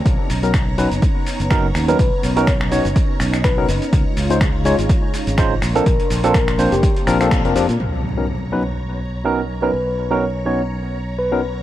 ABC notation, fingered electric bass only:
X:1
M:4/4
L:1/16
Q:"Swing 16ths" 1/4=124
K:B
V:1 name="Fingered electric bass" clef=bass
B,,, z B,,,4- B,,, F,,, z3 F,,,3 D,, z | B,,, z B,,,4- B,,, F,,, z2 B,,,4 F,,, z | C,, z C,,4- C,, G,,, z3 G,,,3 A,,, z | A,,, z A,,,4- A,,, ^E,,, z2 A,,,3 E,,, ^E,, A,, |
B,,,16 | B,,,16 |]